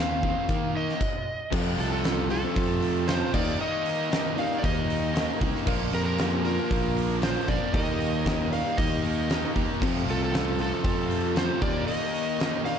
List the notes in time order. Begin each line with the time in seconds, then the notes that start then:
Already playing: D#2 D#3
0.00 C4 F5
0.23 D#3 C4, kick
0.49 D#3 A#3, kick, closed hi-hat
0.76 D#3 A#3 D#5
0.89 snare
1.01 kick, crash
1.51 F2 C3 F3 A3 C4 F4 A4, kick, crash
1.78 C2 F4 A4, open hi-hat
1.91 F4 A4
2.03 F2 C3 F3, snare, open hi-hat
2.28 F2 C3 F3 A3 C4 F4 A4, open hi-hat
2.43 A3 C4 F4 C5
2.54 F2 C3 F3, kick, open hi-hat
2.80 F2 C3 F3 A3 C4, open hi-hat
3.06 F2 C3 F3 A3 C4 F4 C5, snare, open hi-hat
3.32 D#2 D#3 G3 A#3 D#4 G4 A#4 D5, kick, crash
3.59 D#3 A#3 D#4 A#4 D#5
3.86 open hi-hat
4.10 D#3 A#3 D#4, snare, open hi-hat
4.35 D#3 A#3 D#4 G4 D5 F5, open hi-hat
4.39 A#4
4.50 A#3 D#4 G4 A#4
4.57 A#4 D5
4.62 D#2 D#3 G3 A#3 D#4 A#4 D#5, kick, open hi-hat
4.88 D#3 G3 A#3 D#4, open hi-hat
5.13 D#3 A#3 D#4, snare, open hi-hat
5.41 C2 D#3 A#3 D#4, kick, open hi-hat
5.55 snare
5.65 A#1 A#2 D3 F3 A#3 D4 F4 A#4, kick, crash
5.92 F2 G4 A#4, open hi-hat
6.05 G4 A#4
6.18 A#2 F3 A#3, snare, open hi-hat
6.44 A#2 F3 A#3 D4 F4 A#4, open hi-hat
6.58 A#3 D4 F4 A#4
6.71 A#1 A#2 F3 A#3, kick, open hi-hat
6.95 A#2 D3 F3 A#3 D4, open hi-hat
7.21 A#2 D3 F3 A#3 F4 C5, snare, open hi-hat
7.25 D4
7.48 A#1 A#2 F3 A#3 A#4 D5, kick, open hi-hat
7.72 D#2 D#3 G3 A#3 D#4 G4 A#4 D#5, kick, open hi-hat
7.76 A#4
8.01 open hi-hat
8.26 D#3 A#3 D#4, kick, snare, open hi-hat
8.51 D#3 A#3 D#4 G4 A#4 D5 F5, open hi-hat
8.64 A#3 D#4 G4 A#4
8.77 D#2 D#3 A#3 D#4 A#4 D#5, kick, open hi-hat
9.03 D#3 G3 A#3 D#4, open hi-hat
9.28 D#3 G3 A#3 D#4, snare, open hi-hat
9.56 D#2 D#3 A#3 D#4, kick, open hi-hat
9.79 F2 C3 F3 A3 C4 F4 A4, kick, crash
9.83 F3
10.06 C2, open hi-hat
10.10 F4 A4
10.24 F4 A4
10.33 F2 C3 F3, snare, open hi-hat
10.58 F2 C3 F3 A3 C4 F4 A4, open hi-hat
10.62 F4
10.71 A3 C4 F4 A4
10.84 F2 C3 F3, kick, open hi-hat
11.08 F3 A3 C4 F4, open hi-hat
11.34 F2 C3 F3 A3 C4 F4 C5, snare, open hi-hat
11.59 D#2 D#3 G3 A#3 D#4 G4 A#4 D5, kick, open hi-hat
11.63 A#4
11.86 D#3 A#3 D#4 A#4 D#5, open hi-hat
12.15 open hi-hat
12.40 D#3 A#3 D#4, snare, open hi-hat
12.64 D#3 A#3 D#4 G4 A#4 D5 F5, open hi-hat